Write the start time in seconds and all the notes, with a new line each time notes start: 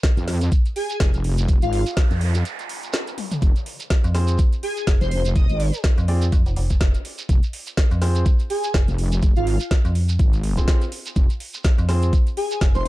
0.03 kick, snare, closed hi-hat, shekere
0.17 F2, closed hi-hat, shekere
0.28 snare, open hi-hat
0.41 closed hi-hat, shekere
0.52 kick, closed hi-hat, shekere
0.66 closed hi-hat, shekere
0.76 G#4, open hi-hat
0.90 closed hi-hat, shekere
1.00 F1, kick, snare, closed hi-hat, shekere
1.14 F1, closed hi-hat, shekere
1.24 open hi-hat
1.38 closed hi-hat, shekere
1.48 F1, kick, closed hi-hat, noise sweep, shekere
1.62 G#1 F4, closed hi-hat, shekere
1.73 F4, open hi-hat
1.86 closed hi-hat, shekere
1.97 kick, snare, closed hi-hat, shekere
2.11 F2, closed hi-hat, shekere
2.21 open hi-hat
2.35 closed hi-hat, shekere
2.45 closed hi-hat, shekere
2.59 closed hi-hat, shekere
2.69 open hi-hat
2.83 closed hi-hat, shekere
2.93 snare, closed hi-hat, shekere
3.07 closed hi-hat, shekere
3.18 open hi-hat, high tom
3.31 closed hi-hat, mid tom, shekere
3.42 F1, kick, closed hi-hat, shekere
3.56 closed hi-hat, shekere
3.66 open hi-hat
3.80 closed hi-hat, shekere
3.90 kick, snare, closed hi-hat, shekere
4.04 F2, closed hi-hat, shekere
4.15 C4 F4 G#4 C5, snare, open hi-hat
4.27 closed hi-hat, shekere
4.38 kick, closed hi-hat, shekere
4.53 closed hi-hat, shekere
4.63 G#4, open hi-hat
4.77 closed hi-hat, shekere
4.87 F1, kick, snare, closed hi-hat, shekere
5.01 F1 C5, closed hi-hat, shekere
5.11 C5, open hi-hat
5.25 closed hi-hat, shekere
5.36 F1 D#5, kick, closed hi-hat, shekere
5.49 G#1, closed hi-hat, shekere
5.60 open hi-hat
5.74 closed hi-hat, shekere
5.84 kick, snare, closed hi-hat, shekere
5.98 F2, closed hi-hat, shekere
6.08 C4 F4 G#4 D5, open hi-hat
6.22 closed hi-hat, shekere
6.32 F2, kick, closed hi-hat, shekere
6.46 F1, closed hi-hat, shekere
6.56 F1, open hi-hat
6.70 kick, closed hi-hat, shekere
6.80 kick, snare, closed hi-hat, shekere
6.94 closed hi-hat, shekere
7.05 open hi-hat
7.18 closed hi-hat, shekere
7.29 F1, kick, closed hi-hat, shekere
7.43 closed hi-hat, shekere
7.53 open hi-hat
7.67 closed hi-hat, shekere
7.77 kick, snare, closed hi-hat, shekere
7.91 F2, closed hi-hat, shekere
8.02 C4 F4 G#4 C5, snare, open hi-hat
8.15 closed hi-hat, shekere
8.26 kick, closed hi-hat, shekere
8.39 closed hi-hat, shekere
8.50 G#4, open hi-hat
8.64 closed hi-hat, shekere
8.74 F1, kick, snare, closed hi-hat, shekere
8.88 F1, closed hi-hat, shekere
8.98 open hi-hat
9.12 closed hi-hat, shekere
9.22 F1, kick, closed hi-hat, shekere
9.36 G#1 F4, closed hi-hat, shekere
9.47 F4, open hi-hat
9.60 closed hi-hat, shekere
9.71 kick, snare, closed hi-hat, shekere
9.85 F2, closed hi-hat, shekere
9.95 open hi-hat
10.09 closed hi-hat, shekere
10.19 G#1, kick, closed hi-hat, shekere
10.33 closed hi-hat, shekere
10.44 open hi-hat
10.57 C4 F4 G#4 C5, kick, closed hi-hat, shekere
10.68 kick, snare, closed hi-hat, shekere
10.81 closed hi-hat, shekere
10.92 open hi-hat
11.06 closed hi-hat, shekere
11.16 F1, kick, closed hi-hat, shekere
11.30 closed hi-hat, shekere
11.40 open hi-hat
11.54 closed hi-hat, shekere
11.64 kick, snare, closed hi-hat, shekere
11.78 F2, closed hi-hat, shekere
11.89 C4 F4 G#4 C5, snare, open hi-hat
12.02 closed hi-hat, shekere
12.13 kick, closed hi-hat, shekere
12.27 closed hi-hat, shekere
12.37 G#4, open hi-hat
12.51 closed hi-hat, shekere
12.61 F1, kick, snare, closed hi-hat, shekere
12.74 F1 C5, closed hi-hat, shekere